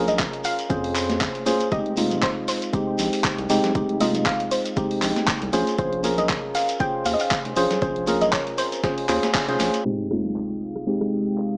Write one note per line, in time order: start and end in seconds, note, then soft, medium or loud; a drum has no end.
0.00 0.27 A#1 loud
0.00 0.67 C#4 medium
0.00 0.67 F4 medium
0.00 0.67 G#4 medium
0.00 0.68 A#4 medium
0.07 0.46 D#5 loud
0.07 closed hi-hat soft
0.07 low conga medium
0.07 shekere medium
0.18 kick loud
0.18 snare loud
0.18 clap loud
0.18 closed hi-hat medium
0.18 shekere soft
0.18 shaker medium
0.33 closed hi-hat soft
0.44 1.42 F5 loud
0.44 open hi-hat loud
0.44 shekere medium
0.44 shaker medium
0.59 closed hi-hat medium
0.59 shekere soft
0.69 1.29 F2 medium
0.69 1.43 C#4 medium
0.69 1.44 F4 medium
0.69 1.44 G#4 medium
0.69 1.44 C5 medium
0.69 kick loud
0.69 closed hi-hat medium
0.69 shekere soft
0.69 shaker medium
0.84 open hi-hat medium
0.95 clap medium
0.95 open hi-hat loud
0.95 shaker medium
0.95 shekere loud
1.09 snare soft
1.09 closed hi-hat soft
1.09 high conga medium
1.09 shekere medium
1.21 kick loud
1.21 snare loud
1.21 clap loud
1.21 closed hi-hat medium
1.21 shekere soft
1.21 shaker medium
1.35 closed hi-hat soft
1.46 1.69 C#4 medium
1.46 1.69 F4 medium
1.46 1.69 G#4 medium
1.46 1.69 C5 medium
1.46 open hi-hat loud
1.46 high conga medium
1.46 shaker medium
1.46 shekere loud
1.60 closed hi-hat medium
1.60 shekere medium
1.71 2.30 F1 loud
1.71 1.94 G#3 medium
1.71 1.94 C4 medium
1.71 1.95 D#4 medium
1.71 1.95 G4 medium
1.71 2.24 D#5 loud
1.71 kick loud
1.71 closed hi-hat medium
1.71 shekere soft
1.71 shaker medium
1.86 closed hi-hat soft
1.96 2.70 G#3 medium
1.96 2.71 C4 medium
1.96 2.71 D#4 medium
1.96 2.71 F4 medium
1.96 open hi-hat loud
1.96 high conga medium
1.96 shekere medium
1.96 shaker medium
2.11 closed hi-hat soft
2.11 low conga medium
2.11 shekere medium
2.23 2.47 C5 medium
2.23 kick medium
2.23 snare loud
2.23 clap loud
2.23 closed hi-hat medium
2.23 shaker medium
2.23 shekere soft
2.48 3.46 C5 medium
2.48 snare medium
2.48 open hi-hat loud
2.48 shaker medium
2.48 shekere medium
2.62 closed hi-hat medium
2.62 shekere medium
2.73 3.47 G#3 medium
2.73 3.47 C4 medium
2.73 3.47 D#4 medium
2.73 3.47 G4 medium
2.73 kick loud
2.73 closed hi-hat medium
2.73 shaker medium
2.73 shekere soft
2.99 3.09 A#1 medium
2.99 open hi-hat loud
2.99 shekere loud
2.99 shaker medium
3.13 closed hi-hat soft
3.13 open hi-hat medium
3.13 shekere medium
3.24 kick loud
3.24 snare loud
3.24 clap loud
3.24 closed hi-hat medium
3.24 shekere soft
3.24 shaker medium
3.38 3.46 C2 medium
3.38 closed hi-hat soft
3.49 3.60 F1 loud
3.49 3.72 G#3 medium
3.49 3.72 C4 medium
3.49 3.73 D#4 medium
3.49 3.73 G4 medium
3.49 open hi-hat loud
3.49 shaker medium
3.49 shekere medium
3.64 snare soft
3.64 closed hi-hat medium
3.64 low conga medium
3.64 shekere medium
3.75 4.34 F1 loud
3.75 3.98 G#3 medium
3.75 3.98 C4 medium
3.75 3.98 D#4 medium
3.75 3.98 G4 medium
3.75 kick loud
3.75 closed hi-hat medium
3.75 shaker medium
3.75 shekere soft
3.89 closed hi-hat soft
4.00 4.74 G#3 medium
4.00 4.74 C4 medium
4.00 4.74 D#4 medium
4.00 4.75 F4 medium
4.00 4.27 D#5 loud
4.00 open hi-hat loud
4.00 high conga medium
4.00 shaker medium
4.00 shekere medium
4.13 closed hi-hat medium
4.13 low conga medium
4.13 shekere soft
4.26 4.37 F5 loud
4.26 kick medium
4.26 snare loud
4.26 clap loud
4.26 closed hi-hat medium
4.26 shaker medium
4.40 closed hi-hat soft
4.51 4.99 C5 medium
4.51 open hi-hat loud
4.51 shaker medium
4.51 shekere medium
4.65 closed hi-hat medium
4.65 shekere soft
4.76 5.50 G#3 medium
4.76 5.50 C4 medium
4.76 5.51 D#4 medium
4.76 5.51 G4 medium
4.76 kick loud
4.76 closed hi-hat medium
4.76 shekere soft
4.76 shaker medium
4.91 open hi-hat medium
5.02 5.12 A#1 medium
5.02 clap medium
5.02 open hi-hat loud
5.02 shaker medium
5.02 shekere medium
5.16 snare medium
5.16 closed hi-hat medium
5.16 high conga medium
5.16 shekere soft
5.28 kick loud
5.28 snare loud
5.28 clap loud
5.28 closed hi-hat medium
5.28 shekere soft
5.28 shaker medium
5.42 5.50 C2 loud
5.42 closed hi-hat soft
5.53 5.63 A#1 loud
5.53 5.76 C#4 medium
5.53 5.76 F4 medium
5.53 5.76 G#4 medium
5.53 5.76 C5 medium
5.53 open hi-hat loud
5.53 high conga medium
5.53 shaker medium
5.53 shekere medium
5.67 closed hi-hat medium
5.67 shekere medium
5.78 6.37 A#1 loud
5.78 6.01 C#4 medium
5.78 6.01 F4 medium
5.78 6.01 G#4 medium
5.78 6.19 C5 medium
5.78 6.01 C5 medium
5.78 kick loud
5.78 closed hi-hat medium
5.78 shekere soft
5.78 shaker medium
5.93 closed hi-hat soft
6.03 6.77 C#4 medium
6.03 6.77 F4 medium
6.03 6.78 G#4 medium
6.03 6.78 A#4 medium
6.03 open hi-hat loud
6.03 high conga medium
6.03 shaker medium
6.03 shekere medium
6.18 6.56 D#5 medium
6.18 closed hi-hat medium
6.18 low conga medium
6.18 shekere soft
6.29 kick medium
6.29 snare loud
6.29 clap loud
6.29 closed hi-hat medium
6.29 shaker medium
6.29 shekere soft
6.55 6.81 F5 loud
6.55 snare medium
6.55 open hi-hat loud
6.55 shaker medium
6.55 shekere medium
6.69 closed hi-hat medium
6.69 shekere medium
6.80 7.53 C#4 medium
6.80 7.54 F4 medium
6.80 7.54 G#4 medium
6.80 7.54 C5 medium
6.80 6.92 G5 loud
6.80 kick loud
6.80 closed hi-hat medium
6.80 shekere soft
6.80 shaker medium
7.06 7.16 D#2 medium
7.06 7.13 F5 loud
7.06 open hi-hat loud
7.06 shaker medium
7.06 shekere medium
7.13 7.21 D#5 medium
7.20 7.54 F5 medium
7.20 closed hi-hat soft
7.20 open hi-hat medium
7.20 shekere medium
7.31 kick loud
7.31 snare loud
7.31 clap loud
7.31 shaker medium
7.31 shekere soft
7.45 7.53 F1 medium
7.45 closed hi-hat soft
7.56 7.67 A#1 loud
7.56 7.79 C#4 medium
7.56 7.79 F4 medium
7.56 7.79 G#4 medium
7.56 7.79 C5 medium
7.56 open hi-hat loud
7.56 shekere medium
7.56 shaker medium
7.71 snare soft
7.71 closed hi-hat medium
7.71 low conga medium
7.71 shekere soft
7.82 8.40 A#1 medium
7.82 8.04 C#4 medium
7.82 8.05 F4 medium
7.82 8.05 G#4 medium
7.82 8.23 C5 loud
7.82 8.05 C5 medium
7.82 kick loud
7.82 closed hi-hat medium
7.82 shekere soft
7.82 shaker medium
7.96 closed hi-hat soft
8.07 8.81 C#4 medium
8.07 8.81 F4 medium
8.07 8.81 G#4 medium
8.07 8.81 A#4 medium
8.07 open hi-hat loud
8.07 high conga medium
8.07 shekere medium
8.07 shaker medium
8.21 8.33 D#5 loud
8.21 closed hi-hat medium
8.21 low conga medium
8.21 shekere medium
8.33 8.59 C#5 loud
8.33 kick medium
8.33 snare loud
8.33 clap loud
8.33 closed hi-hat medium
8.33 shaker medium
8.33 shekere soft
8.47 closed hi-hat soft
8.58 9.56 C5 medium
8.58 open hi-hat loud
8.58 shekere medium
8.58 shaker medium
8.72 closed hi-hat medium
8.72 shekere medium
8.83 9.07 C#4 medium
8.83 9.07 F4 medium
8.83 9.07 G#4 medium
8.83 9.07 C5 medium
8.83 kick loud
8.83 snare loud
8.83 closed hi-hat medium
8.83 shekere soft
8.83 shaker medium
8.98 closed hi-hat soft
8.98 open hi-hat medium
9.09 9.19 D#2 loud
9.09 9.32 C#4 medium
9.09 9.32 F4 medium
9.09 9.32 G#4 medium
9.09 9.32 C5 loud
9.09 clap medium
9.09 open hi-hat loud
9.09 shaker medium
9.09 shekere medium
9.23 snare loud
9.23 closed hi-hat medium
9.23 high conga medium
9.23 shaker medium
9.23 shekere medium
9.34 9.45 C#4 medium
9.34 9.45 F4 medium
9.34 9.45 G#4 medium
9.34 9.45 C5 loud
9.34 kick loud
9.34 clap loud
9.34 closed hi-hat soft
9.34 closed hi-hat medium
9.34 shekere soft
9.48 9.57 F1 medium
9.48 9.82 C#4 loud
9.48 9.83 F4 medium
9.48 9.83 G#4 medium
9.48 9.83 C5 loud
9.48 closed hi-hat soft
9.48 shaker medium
9.59 9.70 A#1 loud
9.59 snare loud
9.59 open hi-hat loud
9.59 high conga medium
9.59 shekere medium
9.59 shaker medium
9.74 closed hi-hat soft
9.74 closed hi-hat medium
9.74 shekere soft
9.85 11.57 F1 medium
9.85 10.08 G#3 medium
9.85 11.57 G#3 medium
9.85 10.08 C4 medium
9.85 10.08 D#4 medium
9.85 10.08 G4 medium
9.85 11.57 F5 medium
9.85 11.57 G5 medium
9.85 11.57 D#6 medium
9.85 sub drop medium
10.10 10.84 G#3 medium
10.10 10.84 C4 medium
10.10 10.84 D#4 medium
10.10 10.85 F4 medium
10.10 cross-stick medium
10.10 high conga medium
10.25 closed hi-hat medium
10.25 low conga medium
10.36 clap loud
10.76 cross-stick medium
10.86 11.57 G#3 medium
10.86 11.57 C4 medium
10.86 11.57 D#4 medium
10.86 11.57 G4 medium
10.86 closed hi-hat medium
11.01 cross-stick medium
11.27 closed hi-hat medium
11.38 clap loud